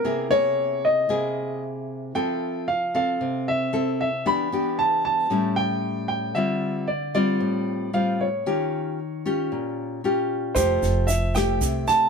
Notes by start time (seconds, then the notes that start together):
Already playing: A#4
0.04 C3 A#3 E4 G#4
0.31 A#3 E4 G#4 C#5
0.85 D#5
1.09 C3 A#3 E4 G#4
2.15 F3 C4 E4 A4 G5
2.68 F5
2.94 C4 A4 F5
3.21 C3
3.48 E5
3.73 C4 E4 A4
4.01 E5
4.26 E3 B3 D4 G4 B5
4.52 B3 D4 G4
4.79 A5
5.05 A5
5.30 A2 G3 C#4 E4
5.56 G5
6.08 G5
6.35 D3 G3 C4 F4 E5
6.88 D5
7.15 G3 C4 F4 D5
7.40 A2
7.93 G3 C4 F4 F5
8.21 C#5
8.46 D#3 C#4 F4 G4
9.26 C#4 F4 G4
9.52 A#2
10.04 C#4 F4 G4
10.55 F1 F3 A3 E4 G4 C5, kick, cross-stick, snare, shaker
10.83 F1, snare, shaker
11.07 E5, snare, shaker
11.35 A3 E4 G4 G5, kick, cross-stick, snare, shaker
11.61 C2 C3, kick, snare, shaker
11.88 A5, snare, shaker